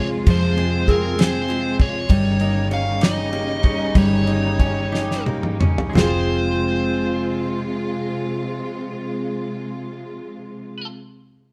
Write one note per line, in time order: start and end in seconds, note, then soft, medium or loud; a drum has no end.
0.00 0.23 F2 medium
0.00 2.06 C3 medium
0.00 0.25 F3 medium
0.00 0.26 F3 medium
0.00 0.56 G#3 medium
0.00 2.06 G#3 medium
0.00 1.47 F4 medium
0.00 2.06 F4 medium
0.00 0.86 G#4 medium
0.00 1.18 G#4 medium
0.26 2.06 F2 loud
0.26 2.08 F3 medium
0.26 2.10 F3 medium
0.26 kick loud
0.26 ride medium
0.30 0.91 C5 loud
0.57 1.48 G#3 medium
0.57 1.17 C4 medium
0.57 ride soft
0.87 1.79 C4 medium
0.87 2.16 G#4 medium
0.87 1.21 A#4 medium
0.87 kick medium
0.87 ride soft
1.18 1.79 C4 medium
1.18 2.16 G#4 medium
1.18 1.76 C5 medium
1.18 snare loud
1.18 ride medium
1.48 2.16 G#3 medium
1.48 2.15 F4 medium
1.48 ride soft
1.80 2.68 C#5 loud
1.80 kick medium
1.80 ride soft
2.09 3.91 G1 loud
2.09 5.91 C#3 medium
2.09 3.94 D#3 medium
2.09 5.91 G3 medium
2.09 3.94 G3 medium
2.09 5.91 D#4 medium
2.09 kick loud
2.09 ride medium
2.40 3.32 A#3 medium
2.40 3.01 D#4 medium
2.40 ride soft
2.71 3.62 C#4 medium
2.71 4.59 C#5 medium
2.71 3.01 F5 medium
2.71 ride soft
3.01 3.63 D#4 medium
3.01 4.91 G4 medium
3.01 3.98 D#5 medium
3.01 snare loud
3.01 ride medium
3.33 4.26 A#3 medium
3.33 5.25 G4 medium
3.33 ride soft
3.63 4.58 C#4 medium
3.63 4.26 D#4 medium
3.63 kick medium
3.63 ride soft
3.95 5.91 G1 loud
3.95 5.95 D#3 medium
3.95 5.93 G3 medium
3.95 5.24 C#5 medium
3.95 kick loud
3.95 ride medium
4.27 5.25 A#3 medium
4.27 4.91 D#4 medium
4.27 ride soft
4.59 5.59 C#4 medium
4.59 6.00 C#5 medium
4.59 kick medium
4.59 ride soft
4.92 5.60 D#4 medium
4.92 6.02 G4 medium
4.92 snare medium
5.11 snare soft
5.26 5.89 A#3 medium
5.26 5.98 G4 medium
5.26 high tom medium
5.43 mid tom medium
5.60 5.98 C#4 medium
5.60 5.96 D#4 medium
5.60 mid tom loud
5.78 floor tom medium
5.89 10.86 F3 medium
5.89 10.82 G#3 medium
5.95 10.84 F1 medium
5.95 10.84 C3 medium
5.95 10.84 G#3 medium
5.95 10.88 C4 medium
5.95 10.91 C4 medium
5.95 10.84 F4 medium
5.95 10.89 F4 medium
5.95 10.91 G#4 medium
5.95 10.87 C5 medium
5.95 snare loud
5.95 floor tom loud
6.00 10.93 C5 medium
6.06 10.99 F4 medium